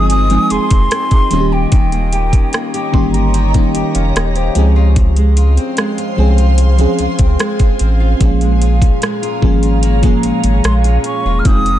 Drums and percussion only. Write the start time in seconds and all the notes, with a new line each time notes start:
0.10 closed hi-hat
0.30 closed hi-hat
0.50 closed hi-hat
0.71 kick, closed hi-hat
0.91 cross-stick, closed hi-hat
1.11 kick, closed hi-hat
1.31 closed hi-hat
1.72 kick, closed hi-hat
1.92 closed hi-hat
2.13 closed hi-hat
2.33 kick, closed hi-hat
2.53 cross-stick, closed hi-hat
2.74 closed hi-hat
2.94 kick
3.14 closed hi-hat
3.34 closed hi-hat
3.54 kick, closed hi-hat
3.75 closed hi-hat
3.95 closed hi-hat
4.16 cross-stick, closed hi-hat
4.36 closed hi-hat
4.55 closed hi-hat
4.96 kick, closed hi-hat
5.16 closed hi-hat
5.37 closed hi-hat
5.57 closed hi-hat
5.77 cross-stick, closed hi-hat
5.98 closed hi-hat
6.38 closed hi-hat
6.58 closed hi-hat
6.78 closed hi-hat
6.99 closed hi-hat
7.19 kick, closed hi-hat
7.39 cross-stick, closed hi-hat
7.59 kick, closed hi-hat
7.79 closed hi-hat
8.21 kick, closed hi-hat
8.41 closed hi-hat
8.62 closed hi-hat
8.82 kick, closed hi-hat
9.02 cross-stick, closed hi-hat
9.23 closed hi-hat
9.42 kick
9.63 closed hi-hat
9.83 closed hi-hat
10.03 kick, closed hi-hat
10.23 closed hi-hat
10.44 closed hi-hat
10.64 cross-stick, closed hi-hat
10.84 closed hi-hat
11.04 closed hi-hat
11.45 kick, closed hi-hat
11.66 closed hi-hat